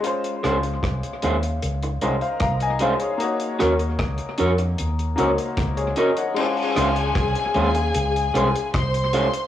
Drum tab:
CC |----------------|----------------|x---------------|
HH |xxxxxxxxxxxxxxxx|xxxxxxxxxxxxxxxx|-xxxxxxxxxxxxxxx|
SD |--r-r-------r---|--r-r-------r---|--r-r-------r---|
BD |----o-------o---|----o-------o---|----o-------o---|